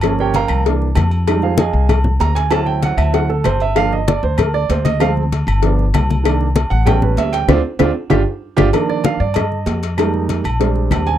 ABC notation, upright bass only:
X:1
M:4/4
L:1/8
Q:1/4=193
K:Fdor
V:1 name="Upright bass" clef=bass
G,,,3 C,,3 F,,2- | F,,3 C,,3 D,,2- | D,,3 D,,3 G,,,2- | G,,,3 D,,3 D,,2- |
D,,3 G,,,3 C,,2- | C,,3 =A,,,3 D,,2 | D,, z D,, z G,,, z2 G,,, | z3 G,,3 F,,2- |
F,,3 B,,,3 E,,2 |]